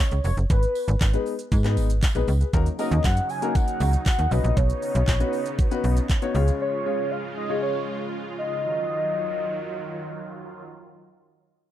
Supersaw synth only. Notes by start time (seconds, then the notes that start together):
2.53 C#3 F#3 D#4
4.32 C#3 B3
6.35 G#3 F4
8.64 D#3 F#3